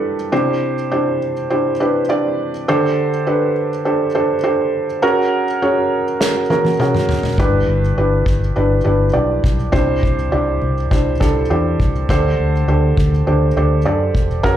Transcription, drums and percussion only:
6.21 snare soft
6.50 high tom medium
6.65 high tom medium
6.80 mid tom medium
6.95 mid tom medium
7.09 floor tom medium
7.23 floor tom medium
7.38 kick medium
8.26 kick medium
9.44 kick medium
9.73 kick medium
10.03 kick medium
10.91 kick medium
11.21 kick medium
11.80 kick medium
12.09 kick medium
12.97 kick medium
14.15 kick medium
14.44 kick medium

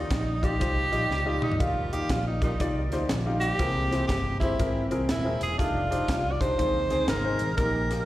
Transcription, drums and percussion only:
0.11 kick medium
0.11 snare medium
0.11 closed hi-hat medium
0.43 kick medium
0.43 closed hi-hat medium
0.61 kick medium
0.61 closed hi-hat medium
0.93 closed hi-hat soft
1.11 snare soft
1.42 mid tom medium
1.52 floor tom medium
1.60 kick loud
1.60 closed hi-hat medium
1.93 closed hi-hat medium
2.09 kick medium
2.09 snare loud
2.09 closed hi-hat medium
2.42 kick medium
2.42 closed hi-hat medium
2.60 kick medium
2.60 closed hi-hat medium
2.92 snare soft
2.92 closed hi-hat medium
3.09 snare loud
3.09 closed hi-hat medium
3.41 closed hi-hat medium
3.59 kick loud
3.59 closed hi-hat medium
3.92 snare soft
3.92 closed hi-hat medium
4.09 kick medium
4.09 snare medium
4.09 closed hi-hat medium
4.41 kick medium
4.41 closed hi-hat medium
4.59 kick medium
4.59 closed hi-hat medium
4.91 closed hi-hat medium
5.09 snare loud
5.09 closed hi-hat medium
5.41 closed hi-hat medium
5.59 kick medium
5.59 closed hi-hat medium
5.92 closed hi-hat medium
6.08 kick medium
6.08 snare medium
6.08 closed hi-hat medium
6.41 kick medium
6.41 closed hi-hat medium
6.59 kick medium
6.59 closed hi-hat medium
6.90 snare soft
6.90 closed hi-hat medium
7.08 snare loud
7.08 closed hi-hat medium
7.39 closed hi-hat medium
7.58 kick medium
7.58 closed hi-hat medium
7.90 snare soft
7.90 closed hi-hat medium

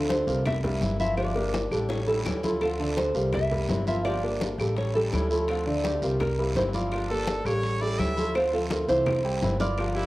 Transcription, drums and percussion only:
0.09 high bongo medium
0.09 high conga medium
0.09 short guiro medium
0.27 high bongo soft
0.27 high conga soft
0.27 short guiro medium
0.46 high bongo medium
0.46 high conga soft
0.46 low conga medium
0.46 long guiro medium
0.46 claves medium
0.63 high bongo soft
0.63 high conga soft
0.63 low conga medium
0.81 high bongo soft
0.81 low bongo medium
0.81 high conga medium
0.81 short guiro medium
1.00 high conga medium
1.00 short guiro medium
1.17 high bongo medium
1.17 high conga soft
1.17 long guiro medium
1.17 claves medium
1.36 high bongo medium
1.36 high conga soft
1.54 low bongo medium
1.54 high conga medium
1.54 short guiro medium
1.72 short guiro medium
1.72 claves medium
1.90 low bongo loud
1.90 high conga soft
1.90 long guiro medium
2.08 low bongo medium
2.08 high conga soft
2.26 low bongo medium
2.26 high conga medium
2.26 short guiro medium
2.26 claves medium
2.43 low bongo medium
2.43 high conga medium
2.43 short guiro medium
2.61 high bongo medium
2.61 high conga soft
2.61 long guiro medium
2.61 claves medium
2.80 high conga soft
2.97 high bongo medium
2.97 high conga medium
2.97 short guiro medium
3.15 high bongo soft
3.15 high conga soft
3.15 short guiro medium
3.33 high bongo medium
3.33 high conga soft
3.33 low conga medium
3.33 long guiro medium
3.33 claves medium
3.51 high bongo soft
3.51 high conga soft
3.51 low conga medium
3.69 high bongo soft
3.69 low bongo medium
3.69 high conga medium
3.69 short guiro medium
3.87 high conga medium
3.87 short guiro medium
4.05 high bongo medium
4.05 high conga soft
4.05 long guiro medium
4.05 claves medium
4.24 high conga soft
4.41 high bongo medium
4.41 high conga medium
4.41 short guiro medium
4.59 high bongo soft
4.59 short guiro medium
4.59 claves medium
4.77 high bongo medium
4.77 high conga soft
4.77 long guiro medium
4.95 high bongo soft
4.95 high conga soft
5.12 high bongo soft
5.12 low bongo medium
5.12 high conga medium
5.12 short guiro medium
5.12 claves medium
5.31 short guiro medium
5.48 high bongo medium
5.48 high conga soft
5.48 long guiro medium
5.48 claves medium
5.67 high conga soft
5.84 high bongo medium
5.84 high conga medium
5.84 short guiro medium
6.02 high bongo soft
6.02 high conga soft
6.02 short guiro medium
6.20 high bongo medium
6.20 high conga soft
6.20 low conga medium
6.20 long guiro medium
6.20 claves medium
6.38 high bongo soft
6.38 high conga soft
6.56 high bongo soft
6.56 low bongo medium
6.56 high conga medium
6.56 short guiro medium
6.73 high conga medium
6.73 short guiro medium
6.92 high bongo medium
6.92 high conga soft
6.92 long guiro medium
6.92 claves medium
7.10 high conga soft
7.27 high bongo medium
7.27 high conga loud
7.27 short guiro medium
7.46 high bongo soft
7.46 short guiro medium
7.46 claves medium
7.63 high bongo medium
7.63 high conga soft
7.63 long guiro medium
7.81 high bongo soft
7.81 high conga soft
7.99 high bongo soft
7.99 low bongo medium
7.99 high conga medium
7.99 short guiro medium
7.99 claves medium
8.17 high conga medium
8.17 short guiro medium
8.35 high bongo medium
8.35 long guiro medium
8.35 claves medium
8.53 high bongo soft
8.53 high conga soft
8.71 high bongo medium
8.71 high conga medium
8.71 short guiro medium
8.89 high bongo soft
8.89 high conga soft
8.89 short guiro medium
9.06 high bongo medium
9.06 high conga soft
9.06 low conga medium
9.06 long guiro medium
9.06 claves medium
9.25 high conga soft
9.42 high bongo soft
9.42 low bongo medium
9.42 high conga medium
9.42 short guiro medium
9.60 high bongo soft
9.60 high conga medium
9.60 short guiro medium
9.78 high bongo medium
9.78 high conga soft
9.78 long guiro medium
9.78 claves medium
9.96 high bongo soft
9.96 high conga soft

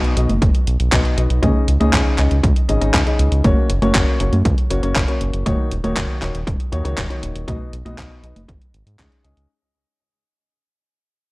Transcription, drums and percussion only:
0.04 closed hi-hat soft
0.17 closed hi-hat medium
0.29 closed hi-hat soft
0.29 high conga medium
0.42 kick loud
0.42 closed hi-hat medium
0.55 closed hi-hat soft
0.67 closed hi-hat medium
0.80 closed hi-hat medium
0.92 kick loud
0.92 clap loud
0.92 closed hi-hat medium
1.05 closed hi-hat soft
1.18 closed hi-hat medium
1.30 closed hi-hat medium
1.43 kick loud
1.43 closed hi-hat medium
1.43 high conga medium
1.68 closed hi-hat medium
1.81 closed hi-hat medium
1.81 high conga medium
1.93 kick loud
1.93 clap loud
1.93 closed hi-hat medium
2.18 clap medium
2.18 closed hi-hat medium
2.31 closed hi-hat medium
2.43 kick loud
2.43 closed hi-hat medium
2.56 closed hi-hat soft
2.69 closed hi-hat medium
2.81 closed hi-hat medium
2.94 kick loud
2.94 clap loud
2.94 closed hi-hat medium
3.07 closed hi-hat soft
3.19 closed hi-hat medium
3.32 closed hi-hat medium
3.44 kick loud
3.44 closed hi-hat medium
3.44 high conga medium
3.70 closed hi-hat medium
3.82 closed hi-hat medium
3.82 high conga medium
3.95 kick loud
3.95 clap loud
3.95 closed hi-hat medium
4.20 closed hi-hat medium
4.33 closed hi-hat medium
4.33 high conga medium
4.45 kick loud
4.45 closed hi-hat medium
4.58 closed hi-hat soft
4.71 closed hi-hat medium
4.83 closed hi-hat medium
4.96 kick loud
4.96 clap loud
4.96 closed hi-hat medium
5.08 closed hi-hat soft
5.21 closed hi-hat medium
5.34 closed hi-hat medium
5.46 kick loud
5.46 closed hi-hat medium
5.46 high conga medium
5.71 closed hi-hat medium
5.84 closed hi-hat medium
5.84 high conga medium
5.97 kick loud
5.97 clap loud
5.97 closed hi-hat medium
6.22 clap medium
6.22 closed hi-hat medium
6.35 closed hi-hat medium
6.47 kick loud
6.47 closed hi-hat medium
6.60 closed hi-hat soft
6.73 closed hi-hat medium
6.85 closed hi-hat medium
6.97 kick loud
6.97 clap loud
6.97 closed hi-hat medium
7.10 closed hi-hat soft
7.23 closed hi-hat medium
7.36 closed hi-hat medium
7.48 kick loud
7.48 closed hi-hat medium
7.48 high conga medium
7.73 closed hi-hat medium
7.86 closed hi-hat medium
7.86 high conga medium
7.98 kick loud
7.98 clap loud
7.98 closed hi-hat medium
8.24 closed hi-hat medium
8.36 closed hi-hat medium
8.36 high conga medium
8.49 kick loud
8.49 closed hi-hat medium
8.62 closed hi-hat soft
8.74 closed hi-hat medium
8.87 closed hi-hat medium
8.99 kick loud
8.99 clap loud
8.99 closed hi-hat medium
9.12 closed hi-hat soft
9.25 closed hi-hat medium
9.37 closed hi-hat medium

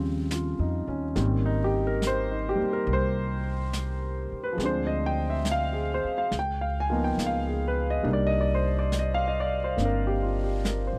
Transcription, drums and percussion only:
0.31 snare soft
0.31 hi-hat pedal soft
1.16 brush sweep soft
1.16 snare soft
2.02 snare soft
2.02 hi-hat pedal medium
2.88 brush sweep soft
3.73 snare soft
3.73 hi-hat pedal medium
4.60 brush sweep soft
4.60 snare soft
5.45 snare soft
5.45 hi-hat pedal soft
6.32 brush sweep soft
6.32 snare soft
7.19 snare soft
7.19 hi-hat pedal soft
8.06 brush sweep soft
8.92 snare soft
8.92 hi-hat pedal soft
9.78 brush sweep soft
9.78 snare soft
10.65 snare soft
10.65 hi-hat pedal soft

